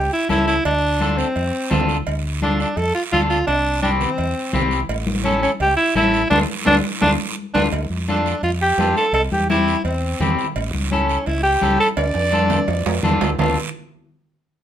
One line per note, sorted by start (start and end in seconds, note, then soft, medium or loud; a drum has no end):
0.00 0.11 G4 loud
0.13 0.29 E4 loud
0.29 0.58 C#2 medium
0.29 0.54 C#4 medium
0.29 0.54 E4 medium
0.29 0.47 E4 loud
0.29 0.55 A4 medium
0.29 high conga loud
0.29 short guiro medium
0.47 0.64 E4 loud
0.47 short guiro medium
0.65 1.22 D2 loud
0.65 1.19 D4 loud
0.65 cowbell loud
0.65 long guiro medium
1.00 1.25 D4 medium
1.00 1.26 F4 medium
1.00 1.26 A4 medium
1.00 high conga medium
1.00 short guiro medium
1.17 1.88 C4 medium
1.17 short guiro medium
1.36 1.50 F2 medium
1.36 cowbell medium
1.36 long guiro medium
1.70 2.00 D2 medium
1.70 1.96 D4 medium
1.70 1.96 F4 medium
1.70 1.96 A4 medium
1.70 high conga medium
1.70 low conga medium
1.70 low timbale medium
1.70 short guiro medium
1.89 short guiro medium
2.07 2.63 D2 loud
2.07 cowbell loud
2.07 long guiro medium
2.42 2.67 D4 medium
2.42 2.59 D4 loud
2.42 2.67 F4 medium
2.42 2.67 A4 medium
2.42 high conga medium
2.42 short guiro medium
2.60 2.79 D4 medium
2.60 short guiro medium
2.77 2.91 F2 medium
2.77 2.94 A4 loud
2.77 cowbell medium
2.77 long guiro medium
2.95 3.03 F4 medium
3.12 3.41 D2 medium
3.12 3.38 D4 medium
3.12 3.20 F4 loud
3.12 3.38 F4 medium
3.12 3.38 A4 medium
3.12 high conga medium
3.12 short guiro medium
3.29 3.46 F4 loud
3.29 short guiro medium
3.47 4.04 C2 loud
3.47 3.80 D4 loud
3.47 cowbell loud
3.47 long guiro medium
3.82 4.08 C4 medium
3.82 3.90 D4 medium
3.82 4.08 E4 medium
3.82 4.08 G4 medium
3.82 high conga medium
3.82 short guiro medium
3.99 4.67 C4 medium
3.99 low conga medium
3.99 short guiro medium
4.18 4.33 E2 medium
4.18 cowbell medium
4.18 long guiro medium
4.53 4.82 C2 loud
4.53 4.79 C4 medium
4.53 4.79 E4 medium
4.53 4.79 G4 medium
4.53 high conga medium
4.53 low conga medium
4.53 short guiro medium
4.71 short guiro medium
4.89 5.46 A1 loud
4.89 cowbell loud
4.89 long guiro medium
5.07 high conga medium
5.24 5.41 C#4 medium
5.24 5.50 C#4 medium
5.24 5.50 E4 medium
5.24 5.50 A4 medium
5.24 high conga medium
5.24 short guiro medium
5.42 5.50 C#4 medium
5.42 short guiro medium
5.60 5.74 C#2 medium
5.60 5.76 G4 loud
5.60 cowbell medium
5.60 long guiro medium
5.76 5.94 E4 loud
5.95 6.24 A1 loud
5.95 6.20 C#4 medium
5.95 6.29 E4 loud
5.95 6.20 E4 medium
5.95 6.21 A4 medium
5.95 high conga medium
5.95 short guiro medium
6.14 short guiro medium
6.30 6.44 D2 loud
6.30 6.42 A3 loud
6.30 6.39 D4 loud
6.30 6.42 D4 medium
6.30 6.42 F4 medium
6.30 high conga loud
6.30 high timbale medium
6.30 long guiro loud
6.65 6.80 D2 medium
6.65 6.77 A3 loud
6.65 6.77 D4 medium
6.65 6.75 D4 loud
6.65 6.77 F4 medium
6.65 high conga loud
6.65 high timbale loud
6.65 long guiro medium
7.01 7.15 D2 medium
7.01 7.13 A3 medium
7.01 7.10 D4 loud
7.01 7.13 D4 medium
7.01 7.13 F4 medium
7.01 high conga loud
7.01 high timbale loud
7.54 7.68 D2 medium
7.54 7.66 A3 medium
7.54 7.63 D4 medium
7.54 7.67 D4 medium
7.54 7.67 F4 loud
7.54 high conga medium
7.54 high timbale loud
7.54 long guiro loud
7.72 7.87 D2 loud
7.72 cowbell medium
7.72 long guiro medium
7.90 8.33 F2 medium
8.08 8.33 D4 medium
8.08 8.42 D4 medium
8.08 8.34 F4 medium
8.08 8.34 A4 medium
8.08 high conga medium
8.08 short guiro medium
8.26 short guiro medium
8.43 8.71 F2 medium
8.43 8.51 F4 loud
8.43 cowbell medium
8.43 long guiro medium
8.62 8.94 G4 loud
8.78 8.92 F2 loud
8.78 9.04 D4 medium
8.78 9.04 F4 medium
8.78 9.04 A4 medium
8.78 high conga medium
8.78 low timbale medium
8.78 short guiro medium
8.97 9.13 A4 loud
8.97 short guiro medium
9.13 9.27 C2 loud
9.13 9.22 A4 loud
9.13 cowbell loud
9.13 long guiro medium
9.32 9.74 E2 medium
9.32 9.48 G4 loud
9.32 high conga medium
9.49 9.75 C4 medium
9.49 9.82 E4 loud
9.49 9.75 E4 medium
9.49 9.75 G4 medium
9.49 high conga medium
9.49 short guiro medium
9.68 short guiro medium
9.84 10.13 E2 loud
9.84 10.34 C4 medium
9.84 cowbell medium
9.84 long guiro medium
10.20 10.34 E2 loud
10.20 10.45 C4 medium
10.20 10.46 E4 medium
10.20 10.46 G4 medium
10.20 high conga medium
10.20 low conga medium
10.20 short guiro medium
10.39 short guiro medium
10.56 10.70 A1 loud
10.56 cowbell medium
10.56 long guiro medium
10.74 11.16 C#2 medium
10.74 high conga medium
10.91 11.28 C#4 medium
10.91 11.16 C#4 medium
10.91 11.17 E4 medium
10.91 11.17 A4 medium
10.91 high conga medium
10.91 short guiro medium
11.09 short guiro medium
11.26 11.55 C#2 loud
11.26 11.42 E4 medium
11.26 cowbell medium
11.26 long guiro medium
11.43 11.77 G4 loud
11.62 11.76 C#2 loud
11.62 11.87 C#4 medium
11.62 11.87 E4 medium
11.62 11.87 A4 medium
11.62 high conga medium
11.62 short guiro medium
11.80 11.88 A4 loud
11.80 short guiro medium
11.97 12.12 D2 loud
11.97 13.00 D5 loud
11.97 cowbell loud
11.97 high timbale medium
11.97 long guiro medium
12.14 12.58 F2 medium
12.14 high timbale medium
12.32 12.58 D4 medium
12.32 12.58 F4 medium
12.32 12.58 A4 medium
12.32 high conga medium
12.32 high timbale medium
12.32 short guiro medium
12.50 low conga medium
12.50 high timbale loud
12.50 short guiro medium
12.68 12.82 F2 loud
12.68 cowbell medium
12.68 low timbale medium
12.68 long guiro medium
12.86 13.02 F2 medium
12.86 low timbale loud
13.03 13.20 E2 medium
13.03 13.29 D4 medium
13.03 13.29 F4 medium
13.03 13.29 A4 loud
13.03 high conga medium
13.03 low conga medium
13.03 short guiro medium
13.21 13.38 D2 medium
13.21 low timbale medium
13.21 short guiro medium
13.39 13.56 D2 medium
13.39 13.56 D4 medium
13.39 13.56 F4 medium
13.39 13.56 A4 medium
13.39 low conga medium
13.39 low timbale loud
13.39 long guiro loud